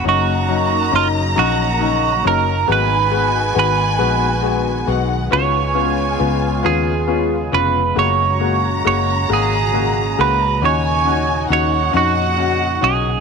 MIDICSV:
0, 0, Header, 1, 6, 480
1, 0, Start_track
1, 0, Tempo, 881057
1, 32, Time_signature, 6, 3, 24, 8
1, 7192, End_track
2, 0, Start_track
2, 0, Title_t, "Violin section"
2, 0, Program_c, 0, 48
2, 28, Note_on_c, 0, 82, 118
2, 1464, Note_off_c, 0, 82, 0
2, 1466, Note_on_c, 0, 80, 113
2, 2659, Note_off_c, 0, 80, 0
2, 2667, Note_on_c, 0, 78, 84
2, 2903, Note_off_c, 0, 78, 0
2, 2904, Note_on_c, 0, 80, 90
2, 4081, Note_off_c, 0, 80, 0
2, 4341, Note_on_c, 0, 82, 110
2, 5769, Note_off_c, 0, 82, 0
2, 5795, Note_on_c, 0, 80, 105
2, 6250, Note_off_c, 0, 80, 0
2, 6269, Note_on_c, 0, 78, 99
2, 7192, Note_off_c, 0, 78, 0
2, 7192, End_track
3, 0, Start_track
3, 0, Title_t, "Clean electric guitar"
3, 0, Program_c, 1, 27
3, 48, Note_on_c, 1, 66, 79
3, 519, Note_off_c, 1, 66, 0
3, 522, Note_on_c, 1, 65, 74
3, 585, Note_off_c, 1, 65, 0
3, 758, Note_on_c, 1, 66, 88
3, 1237, Note_off_c, 1, 66, 0
3, 1239, Note_on_c, 1, 70, 90
3, 1479, Note_off_c, 1, 70, 0
3, 1483, Note_on_c, 1, 71, 96
3, 1951, Note_off_c, 1, 71, 0
3, 1958, Note_on_c, 1, 71, 93
3, 2645, Note_off_c, 1, 71, 0
3, 2905, Note_on_c, 1, 73, 105
3, 3627, Note_on_c, 1, 68, 87
3, 3643, Note_off_c, 1, 73, 0
3, 4110, Note_on_c, 1, 71, 89
3, 4119, Note_off_c, 1, 68, 0
3, 4350, Note_off_c, 1, 71, 0
3, 4352, Note_on_c, 1, 73, 100
3, 4828, Note_off_c, 1, 73, 0
3, 4835, Note_on_c, 1, 73, 92
3, 5056, Note_off_c, 1, 73, 0
3, 5085, Note_on_c, 1, 68, 87
3, 5562, Note_on_c, 1, 71, 90
3, 5574, Note_off_c, 1, 68, 0
3, 5802, Note_off_c, 1, 71, 0
3, 5804, Note_on_c, 1, 73, 99
3, 6255, Note_off_c, 1, 73, 0
3, 6282, Note_on_c, 1, 73, 88
3, 6499, Note_off_c, 1, 73, 0
3, 6520, Note_on_c, 1, 66, 88
3, 6995, Note_on_c, 1, 68, 93
3, 7007, Note_off_c, 1, 66, 0
3, 7192, Note_off_c, 1, 68, 0
3, 7192, End_track
4, 0, Start_track
4, 0, Title_t, "Upright piano"
4, 0, Program_c, 2, 0
4, 22, Note_on_c, 2, 54, 79
4, 25, Note_on_c, 2, 61, 68
4, 27, Note_on_c, 2, 63, 79
4, 167, Note_off_c, 2, 54, 0
4, 169, Note_off_c, 2, 61, 0
4, 169, Note_off_c, 2, 63, 0
4, 264, Note_on_c, 2, 54, 71
4, 266, Note_on_c, 2, 61, 64
4, 266, Note_on_c, 2, 63, 75
4, 407, Note_off_c, 2, 54, 0
4, 408, Note_off_c, 2, 63, 0
4, 409, Note_off_c, 2, 61, 0
4, 500, Note_on_c, 2, 54, 72
4, 501, Note_on_c, 2, 61, 66
4, 504, Note_on_c, 2, 63, 87
4, 645, Note_off_c, 2, 54, 0
4, 646, Note_off_c, 2, 61, 0
4, 647, Note_off_c, 2, 63, 0
4, 740, Note_on_c, 2, 54, 93
4, 741, Note_on_c, 2, 61, 83
4, 743, Note_on_c, 2, 63, 94
4, 884, Note_off_c, 2, 54, 0
4, 885, Note_off_c, 2, 61, 0
4, 886, Note_off_c, 2, 63, 0
4, 981, Note_on_c, 2, 54, 65
4, 984, Note_on_c, 2, 61, 66
4, 984, Note_on_c, 2, 63, 82
4, 1125, Note_off_c, 2, 54, 0
4, 1126, Note_off_c, 2, 61, 0
4, 1126, Note_off_c, 2, 63, 0
4, 1222, Note_on_c, 2, 54, 78
4, 1222, Note_on_c, 2, 61, 69
4, 1224, Note_on_c, 2, 63, 77
4, 1364, Note_off_c, 2, 54, 0
4, 1364, Note_off_c, 2, 61, 0
4, 1365, Note_off_c, 2, 63, 0
4, 1457, Note_on_c, 2, 56, 81
4, 1458, Note_on_c, 2, 59, 78
4, 1458, Note_on_c, 2, 66, 101
4, 1601, Note_off_c, 2, 56, 0
4, 1601, Note_off_c, 2, 59, 0
4, 1602, Note_off_c, 2, 66, 0
4, 1694, Note_on_c, 2, 56, 70
4, 1697, Note_on_c, 2, 59, 65
4, 1697, Note_on_c, 2, 66, 85
4, 1839, Note_off_c, 2, 56, 0
4, 1840, Note_off_c, 2, 59, 0
4, 1840, Note_off_c, 2, 66, 0
4, 1932, Note_on_c, 2, 56, 79
4, 1933, Note_on_c, 2, 59, 78
4, 1935, Note_on_c, 2, 66, 89
4, 2077, Note_off_c, 2, 56, 0
4, 2078, Note_off_c, 2, 59, 0
4, 2079, Note_off_c, 2, 66, 0
4, 2170, Note_on_c, 2, 56, 84
4, 2172, Note_on_c, 2, 59, 82
4, 2174, Note_on_c, 2, 66, 106
4, 2315, Note_off_c, 2, 56, 0
4, 2317, Note_off_c, 2, 59, 0
4, 2317, Note_off_c, 2, 66, 0
4, 2411, Note_on_c, 2, 56, 73
4, 2413, Note_on_c, 2, 59, 71
4, 2414, Note_on_c, 2, 66, 85
4, 2555, Note_off_c, 2, 56, 0
4, 2556, Note_off_c, 2, 59, 0
4, 2557, Note_off_c, 2, 66, 0
4, 2652, Note_on_c, 2, 56, 73
4, 2655, Note_on_c, 2, 59, 68
4, 2655, Note_on_c, 2, 66, 82
4, 2796, Note_off_c, 2, 56, 0
4, 2797, Note_off_c, 2, 59, 0
4, 2797, Note_off_c, 2, 66, 0
4, 2891, Note_on_c, 2, 59, 80
4, 2891, Note_on_c, 2, 61, 75
4, 2894, Note_on_c, 2, 65, 89
4, 3035, Note_off_c, 2, 59, 0
4, 3035, Note_off_c, 2, 61, 0
4, 3037, Note_off_c, 2, 65, 0
4, 3129, Note_on_c, 2, 59, 68
4, 3132, Note_on_c, 2, 61, 58
4, 3132, Note_on_c, 2, 65, 75
4, 3274, Note_off_c, 2, 59, 0
4, 3275, Note_off_c, 2, 61, 0
4, 3276, Note_off_c, 2, 65, 0
4, 3374, Note_on_c, 2, 59, 74
4, 3374, Note_on_c, 2, 61, 69
4, 3375, Note_on_c, 2, 65, 78
4, 3516, Note_off_c, 2, 59, 0
4, 3517, Note_off_c, 2, 61, 0
4, 3517, Note_off_c, 2, 65, 0
4, 3610, Note_on_c, 2, 59, 80
4, 3613, Note_on_c, 2, 65, 90
4, 3614, Note_on_c, 2, 61, 71
4, 3755, Note_off_c, 2, 59, 0
4, 3757, Note_off_c, 2, 61, 0
4, 3757, Note_off_c, 2, 65, 0
4, 3853, Note_on_c, 2, 59, 64
4, 3854, Note_on_c, 2, 61, 63
4, 3856, Note_on_c, 2, 65, 79
4, 3997, Note_off_c, 2, 59, 0
4, 3998, Note_off_c, 2, 61, 0
4, 3999, Note_off_c, 2, 65, 0
4, 4095, Note_on_c, 2, 59, 66
4, 4098, Note_on_c, 2, 61, 61
4, 4099, Note_on_c, 2, 65, 80
4, 4238, Note_off_c, 2, 59, 0
4, 4240, Note_off_c, 2, 61, 0
4, 4240, Note_off_c, 2, 65, 0
4, 4333, Note_on_c, 2, 56, 80
4, 4334, Note_on_c, 2, 58, 72
4, 4335, Note_on_c, 2, 66, 85
4, 4479, Note_off_c, 2, 56, 0
4, 4479, Note_off_c, 2, 58, 0
4, 4479, Note_off_c, 2, 66, 0
4, 4575, Note_on_c, 2, 56, 67
4, 4576, Note_on_c, 2, 58, 57
4, 4578, Note_on_c, 2, 66, 73
4, 4721, Note_off_c, 2, 56, 0
4, 4721, Note_off_c, 2, 58, 0
4, 4722, Note_off_c, 2, 66, 0
4, 4821, Note_on_c, 2, 56, 70
4, 4821, Note_on_c, 2, 58, 65
4, 4822, Note_on_c, 2, 66, 84
4, 4965, Note_off_c, 2, 56, 0
4, 4965, Note_off_c, 2, 58, 0
4, 4965, Note_off_c, 2, 66, 0
4, 5063, Note_on_c, 2, 56, 79
4, 5065, Note_on_c, 2, 58, 75
4, 5066, Note_on_c, 2, 66, 85
4, 5207, Note_off_c, 2, 56, 0
4, 5208, Note_off_c, 2, 58, 0
4, 5208, Note_off_c, 2, 66, 0
4, 5303, Note_on_c, 2, 56, 69
4, 5305, Note_on_c, 2, 58, 62
4, 5308, Note_on_c, 2, 66, 76
4, 5448, Note_off_c, 2, 56, 0
4, 5448, Note_off_c, 2, 58, 0
4, 5450, Note_off_c, 2, 66, 0
4, 5545, Note_on_c, 2, 56, 70
4, 5550, Note_on_c, 2, 58, 71
4, 5550, Note_on_c, 2, 66, 78
4, 5689, Note_off_c, 2, 56, 0
4, 5691, Note_off_c, 2, 58, 0
4, 5691, Note_off_c, 2, 66, 0
4, 5785, Note_on_c, 2, 61, 79
4, 5786, Note_on_c, 2, 63, 77
4, 5787, Note_on_c, 2, 66, 83
4, 5928, Note_off_c, 2, 61, 0
4, 5929, Note_off_c, 2, 63, 0
4, 5929, Note_off_c, 2, 66, 0
4, 6022, Note_on_c, 2, 61, 69
4, 6024, Note_on_c, 2, 63, 57
4, 6027, Note_on_c, 2, 66, 73
4, 6166, Note_off_c, 2, 61, 0
4, 6167, Note_off_c, 2, 63, 0
4, 6169, Note_off_c, 2, 66, 0
4, 6262, Note_on_c, 2, 61, 73
4, 6263, Note_on_c, 2, 63, 70
4, 6266, Note_on_c, 2, 66, 83
4, 6406, Note_off_c, 2, 61, 0
4, 6406, Note_off_c, 2, 63, 0
4, 6408, Note_off_c, 2, 66, 0
4, 6500, Note_on_c, 2, 61, 92
4, 6501, Note_on_c, 2, 63, 85
4, 6502, Note_on_c, 2, 66, 101
4, 6645, Note_off_c, 2, 61, 0
4, 6645, Note_off_c, 2, 63, 0
4, 6646, Note_off_c, 2, 66, 0
4, 6744, Note_on_c, 2, 61, 73
4, 6745, Note_on_c, 2, 63, 61
4, 6745, Note_on_c, 2, 66, 81
4, 6886, Note_off_c, 2, 61, 0
4, 6886, Note_off_c, 2, 63, 0
4, 6887, Note_off_c, 2, 66, 0
4, 6981, Note_on_c, 2, 61, 75
4, 6982, Note_on_c, 2, 63, 73
4, 6984, Note_on_c, 2, 66, 85
4, 7124, Note_off_c, 2, 61, 0
4, 7124, Note_off_c, 2, 63, 0
4, 7125, Note_off_c, 2, 66, 0
4, 7192, End_track
5, 0, Start_track
5, 0, Title_t, "Analog synth pad"
5, 0, Program_c, 3, 89
5, 0, Note_on_c, 3, 49, 74
5, 0, Note_on_c, 3, 58, 72
5, 32, Note_on_c, 3, 63, 86
5, 35, Note_on_c, 3, 54, 72
5, 1440, Note_off_c, 3, 49, 0
5, 1442, Note_off_c, 3, 58, 0
5, 1452, Note_off_c, 3, 63, 0
5, 1453, Note_off_c, 3, 54, 0
5, 1461, Note_on_c, 3, 59, 73
5, 1463, Note_on_c, 3, 51, 79
5, 1464, Note_on_c, 3, 56, 77
5, 1465, Note_on_c, 3, 66, 82
5, 2883, Note_off_c, 3, 51, 0
5, 2884, Note_off_c, 3, 66, 0
5, 2905, Note_on_c, 3, 49, 84
5, 2906, Note_on_c, 3, 65, 88
5, 4317, Note_off_c, 3, 59, 0
5, 4331, Note_off_c, 3, 65, 0
5, 4339, Note_on_c, 3, 46, 70
5, 4340, Note_on_c, 3, 66, 94
5, 5768, Note_off_c, 3, 56, 0
5, 5776, Note_off_c, 3, 66, 0
5, 5793, Note_on_c, 3, 66, 71
5, 5796, Note_on_c, 3, 63, 89
5, 7192, Note_off_c, 3, 46, 0
5, 7192, Note_off_c, 3, 49, 0
5, 7192, Note_off_c, 3, 63, 0
5, 7192, Note_off_c, 3, 66, 0
5, 7192, End_track
6, 0, Start_track
6, 0, Title_t, "Fingered electric bass"
6, 0, Program_c, 4, 33
6, 30, Note_on_c, 4, 30, 95
6, 488, Note_off_c, 4, 30, 0
6, 509, Note_on_c, 4, 30, 98
6, 734, Note_off_c, 4, 30, 0
6, 752, Note_on_c, 4, 34, 97
6, 1207, Note_off_c, 4, 34, 0
6, 1229, Note_on_c, 4, 30, 83
6, 1452, Note_off_c, 4, 30, 0
6, 1466, Note_on_c, 4, 32, 97
6, 1921, Note_off_c, 4, 32, 0
6, 1940, Note_on_c, 4, 32, 101
6, 2166, Note_off_c, 4, 32, 0
6, 2180, Note_on_c, 4, 34, 92
6, 2637, Note_off_c, 4, 34, 0
6, 2658, Note_on_c, 4, 35, 86
6, 2884, Note_off_c, 4, 35, 0
6, 2903, Note_on_c, 4, 37, 92
6, 3359, Note_off_c, 4, 37, 0
6, 3381, Note_on_c, 4, 37, 97
6, 3606, Note_off_c, 4, 37, 0
6, 3622, Note_on_c, 4, 39, 81
6, 4080, Note_off_c, 4, 39, 0
6, 4101, Note_on_c, 4, 29, 77
6, 4328, Note_off_c, 4, 29, 0
6, 4342, Note_on_c, 4, 30, 98
6, 4804, Note_off_c, 4, 30, 0
6, 4828, Note_on_c, 4, 30, 85
6, 5055, Note_off_c, 4, 30, 0
6, 5067, Note_on_c, 4, 32, 85
6, 5529, Note_off_c, 4, 32, 0
6, 5550, Note_on_c, 4, 37, 73
6, 5776, Note_off_c, 4, 37, 0
6, 5785, Note_on_c, 4, 39, 102
6, 6245, Note_off_c, 4, 39, 0
6, 6266, Note_on_c, 4, 39, 87
6, 6493, Note_off_c, 4, 39, 0
6, 6505, Note_on_c, 4, 41, 86
6, 6963, Note_off_c, 4, 41, 0
6, 6988, Note_on_c, 4, 35, 84
6, 7192, Note_off_c, 4, 35, 0
6, 7192, End_track
0, 0, End_of_file